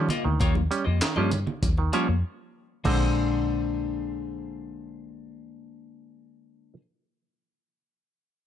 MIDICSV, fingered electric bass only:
0, 0, Header, 1, 3, 480
1, 0, Start_track
1, 0, Tempo, 612245
1, 315, Time_signature, 4, 2, 24, 8
1, 6637, End_track
2, 0, Start_track
2, 0, Title_t, "Fingered electric bass"
2, 0, Program_c, 0, 33
2, 200, Note_on_c, 0, 38, 95
2, 301, Note_off_c, 0, 38, 0
2, 319, Note_on_c, 0, 39, 97
2, 524, Note_off_c, 0, 39, 0
2, 681, Note_on_c, 0, 41, 88
2, 782, Note_off_c, 0, 41, 0
2, 920, Note_on_c, 0, 43, 79
2, 1124, Note_off_c, 0, 43, 0
2, 1275, Note_on_c, 0, 39, 90
2, 1481, Note_off_c, 0, 39, 0
2, 1636, Note_on_c, 0, 41, 78
2, 1739, Note_off_c, 0, 41, 0
2, 2239, Note_on_c, 0, 34, 88
2, 5282, Note_off_c, 0, 34, 0
2, 6637, End_track
3, 0, Start_track
3, 0, Title_t, "Muted fingered electric bass strokes"
3, 803, Note_on_c, 9, 29, 45
3, 881, Note_off_c, 9, 29, 0
3, 6637, End_track
0, 0, End_of_file